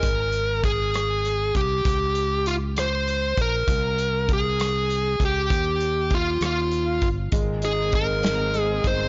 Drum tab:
HH |xxxxxx|xxxxxx|xxxxxx|xxxxxx|
SD |---rr-|---r--|---r--|---r--|
BD |o-o--o|o----o|o-o--o|o-o--o|

HH |xxxxxx|
SD |---o--|
BD |o-o--o|